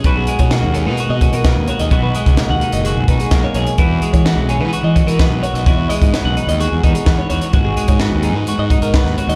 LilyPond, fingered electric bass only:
\new Staff \with { instrumentName = "Fingered electric bass" } { \clef bass \time 4/4 \key gis \minor \tempo 4 = 128 b,,8 r16 b,8 dis,8 b,16 r16 b,8 b,8 dis,16 r16 dis,16 | b,,8 r16 cis,16 r16 dis,16 r16 fis,,8 b,,16 b,,16 r16 b,,16 r16 b,,16 r16 | e,8 r16 e8 b,,8 e16 r16 e8 e8 b,,16 r16 b,,16 | e,8 r16 gis,16 r16 b,,16 r16 dis,8 e,16 e,16 r16 e,16 r16 e,16 r16 |
gis,,8 r16 gis,8 dis,8 gis,16 r16 gis,8 gis,8 dis,16 r16 dis,16 | }